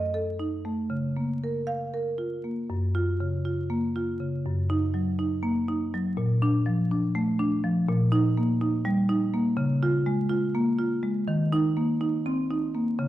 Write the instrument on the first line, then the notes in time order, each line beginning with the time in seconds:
marimba
Already playing: F#2 D#5
0.14 A4
0.39 D#4
0.65 A3
0.90 C#3
1.17 A#3
1.44 A#4
1.67 F5
1.94 A#4
2.18 F4
2.44 A#3
2.70 F#2
2.95 F4
3.20 C#3
3.45 F4
3.70 A#3
3.96 F4
4.20 C#3
4.46 F#2
4.70 D#4
4.94 F#3
5.19 D#4
5.43 A#3
5.68 D#4
5.94 F#3
6.17 A#2
6.42 D4
6.66 F3
6.91 D4
7.15 A3
7.39 D4
7.64 F3
7.88 A#2
8.12 D#4
8.37 A#3
8.61 D#4
8.85 G3
9.09 D#4
9.34 A#3
9.57 C#3
9.83 F4
10.06 G#3
10.29 F4
10.55 A#3
10.79 F4
11.03 G#3
11.28 D#3
11.52 D#4
11.77 A#3
12.01 D#4
12.26 C4
12.51 D#4
12.75 A#3
12.99 C#3